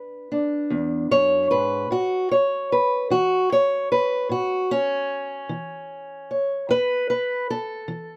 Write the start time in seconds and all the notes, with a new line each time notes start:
Already playing: E2 D4 B4
0.32 D4
0.70 E2
1.11 F#2 C#5
1.51 G#2 B4
1.90 A2 F#4
2.31 C#5
2.72 B4
3.10 E3 F#4
3.52 C#5
3.92 B4
4.29 A2 F#4
4.71 C#4
5.49 E3
6.31 C#5
6.69 E2 B4
7.10 B4
7.50 A4
7.88 E3